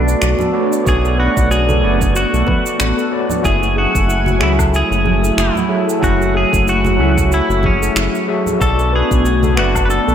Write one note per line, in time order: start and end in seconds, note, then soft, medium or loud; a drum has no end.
0.00 0.16 B1 medium
0.00 3.41 A3 medium
0.00 0.52 B3 medium
0.00 3.40 B3 medium
0.00 0.50 D4 medium
0.00 3.41 D4 medium
0.00 0.53 F#4 medium
0.00 0.54 A4 medium
0.00 0.54 D5 medium
0.00 0.87 C#6 medium
0.07 0.21 D5 medium
0.07 cabasa medium
0.22 0.35 B1 loud
0.22 0.39 F#4 medium
0.22 finger snap medium
0.22 cabasa medium
0.39 0.47 A4 medium
0.39 low conga medium
0.39 cabasa soft
0.52 0.82 B3 medium
0.52 0.82 F#4 medium
0.52 0.83 A4 medium
0.52 0.70 B4 medium
0.52 0.83 C#5 medium
0.52 0.83 D5 medium
0.72 0.85 D5 medium
0.72 cabasa medium
0.84 1.29 B1 loud
0.84 1.79 A3 medium
0.84 1.79 B3 medium
0.84 1.79 F#4 medium
0.84 1.02 F#4 medium
0.84 1.80 D5 medium
0.84 1.80 C#6 medium
0.84 kick loud
0.84 cabasa medium
0.89 1.19 G#4 loud
1.04 1.18 A4 medium
1.04 cabasa soft
1.18 1.51 F#4 medium
1.18 1.35 B4 medium
1.37 1.85 B1 loud
1.37 1.50 D5 medium
1.37 kick loud
1.37 cabasa medium
1.51 1.68 F#4 medium
1.51 2.16 G#4 medium
1.51 cabasa medium
1.69 1.76 A4 medium
1.69 high conga medium
1.69 cabasa soft
1.80 2.26 F#1 medium
1.80 3.08 A3 medium
1.80 3.07 B3 medium
1.80 3.08 F#4 medium
1.80 1.99 B4 medium
1.80 3.09 D5 medium
1.80 3.09 C#6 medium
2.01 2.14 D5 medium
2.01 kick loud
2.01 high conga medium
2.01 cabasa medium
2.15 2.32 F#4 medium
2.15 3.09 F#4 medium
2.15 cabasa medium
2.33 2.44 B1 medium
2.33 2.47 A4 medium
2.33 cabasa soft
2.47 2.64 B4 medium
2.47 kick loud
2.47 low conga medium
2.65 2.79 D5 medium
2.65 cabasa medium
2.79 2.93 A1 medium
2.79 2.97 F#4 medium
2.79 finger snap medium
2.79 cabasa medium
2.97 3.05 A4 medium
2.97 cabasa soft
3.11 3.40 B3 medium
3.11 3.41 F#4 medium
3.11 3.41 A4 medium
3.11 3.28 B4 medium
3.11 3.41 C#5 medium
3.11 3.41 D5 medium
3.30 3.43 D5 medium
3.30 low conga medium
3.30 cabasa medium
3.42 3.87 F#1 medium
3.42 4.36 F#3 medium
3.42 8.56 F#3 medium
3.42 8.56 A3 medium
3.42 4.38 A3 medium
3.42 8.56 E4 medium
3.42 3.61 E4 medium
3.42 4.37 F#4 medium
3.42 3.78 G#4 loud
3.42 4.38 E5 medium
3.42 5.99 G#5 medium
3.42 4.37 G#5 medium
3.42 kick loud
3.42 cabasa medium
3.62 3.76 F#4 medium
3.62 cabasa soft
3.76 4.38 F#4 medium
3.76 3.93 G#4 medium
3.94 4.42 F#1 loud
3.94 4.08 A4 medium
3.94 kick loud
3.94 cabasa medium
4.08 4.26 E4 medium
4.08 cabasa medium
4.26 4.34 F#4 medium
4.26 high conga medium
4.26 cabasa soft
4.38 4.83 C#2 medium
4.38 5.65 F#3 medium
4.38 5.67 A3 medium
4.38 5.66 F#4 medium
4.38 4.57 G#4 medium
4.38 5.67 E5 medium
4.38 5.66 G#5 medium
4.38 finger snap medium
4.43 4.52 E4 medium
4.59 4.72 A4 medium
4.59 kick medium
4.59 high conga medium
4.59 cabasa medium
4.59 low woodblock medium
4.72 4.89 E4 medium
4.72 5.41 G#4 loud
4.72 cabasa medium
4.91 5.31 F#1 medium
4.91 5.04 F#4 medium
4.91 cabasa soft
5.05 5.21 G#4 medium
5.05 low conga medium
5.23 5.37 A4 medium
5.23 cabasa medium
5.37 5.51 F#1 loud
5.37 5.54 E4 medium
5.37 5.86 E4 medium
5.37 finger snap medium
5.37 cabasa medium
5.55 5.63 F#4 medium
5.55 low conga medium
5.55 cabasa soft
5.69 5.98 F#3 medium
5.69 5.98 F#4 medium
5.69 5.86 G#4 medium
5.69 5.99 G#4 medium
5.69 5.99 A4 medium
5.69 5.99 E5 medium
5.88 6.01 A4 medium
5.88 cabasa medium
6.00 6.45 F#1 medium
6.00 6.94 F#3 medium
6.00 6.96 A3 medium
6.00 6.18 E4 medium
6.00 6.95 F#4 medium
6.00 8.57 F#4 medium
6.00 6.96 E5 medium
6.00 6.95 G#5 medium
6.00 kick loud
6.00 cabasa medium
6.04 6.36 F#4 medium
6.20 6.34 F#4 medium
6.20 cabasa soft
6.34 6.51 G#4 loud
6.34 6.69 G#4 medium
6.52 7.00 F#1 loud
6.52 6.66 A4 medium
6.52 kick loud
6.52 cabasa medium
6.67 6.84 E4 medium
6.67 7.33 F#4 medium
6.67 cabasa soft
6.85 6.93 F#4 medium
6.85 high conga medium
6.85 cabasa soft
6.97 7.41 C#2 medium
6.97 8.24 F#3 medium
6.97 8.25 A3 medium
6.97 8.24 F#4 medium
6.97 7.15 G#4 medium
6.97 8.25 E5 medium
6.97 8.24 G#5 medium
7.17 7.31 A4 medium
7.17 kick loud
7.17 high conga medium
7.17 cabasa medium
7.31 7.48 E4 medium
7.31 7.66 E4 medium
7.31 cabasa medium
7.49 7.90 F#1 medium
7.49 7.63 F#4 medium
7.49 cabasa soft
7.63 8.25 C#4 medium
7.63 7.80 G#4 medium
7.63 kick medium
7.63 low conga medium
7.82 7.95 A4 medium
7.82 cabasa medium
7.96 8.09 F#1 medium
7.96 8.13 E4 medium
7.96 finger snap medium
7.96 cabasa medium
8.14 8.22 F#4 medium
8.14 cabasa soft
8.27 8.57 F#3 medium
8.27 8.57 F#4 medium
8.27 8.57 G#4 medium
8.27 8.45 G#4 medium
8.27 8.57 A4 medium
8.27 8.57 E5 medium
8.46 8.60 A4 medium
8.46 low conga medium
8.46 cabasa medium
8.59 9.03 B1 loud
8.59 10.15 A3 medium
8.59 9.54 A3 medium
8.59 9.53 B3 medium
8.59 10.15 B3 medium
8.59 10.15 D4 medium
8.59 9.53 F#4 medium
8.59 8.77 F#4 medium
8.59 8.94 A4 loud
8.59 9.55 D5 loud
8.59 9.54 C#6 medium
8.59 kick loud
8.59 cabasa medium
8.79 8.92 A4 medium
8.79 cabasa soft
8.93 9.59 G#4 medium
8.93 9.09 B4 loud
9.11 9.59 B1 medium
9.11 9.24 D5 medium
9.11 kick loud
9.11 cabasa medium
9.25 9.42 F#4 medium
9.25 cabasa soft
9.43 9.51 A4 medium
9.43 high conga medium
9.43 cabasa soft
9.55 10.00 F#1 medium
9.55 10.15 A3 medium
9.55 10.15 B3 medium
9.55 10.15 F#4 medium
9.55 9.85 F#4 loud
9.55 9.74 B4 medium
9.55 10.15 D5 medium
9.55 10.15 C#6 medium
9.55 finger snap medium
9.75 9.89 D5 medium
9.75 kick loud
9.75 high conga medium
9.75 cabasa medium
9.75 low woodblock medium
9.85 9.90 B4 medium
9.90 10.06 F#4 medium
9.90 10.15 A4 loud
9.90 cabasa medium
10.08 10.15 B1 medium
10.08 10.15 A4 medium
10.08 cabasa soft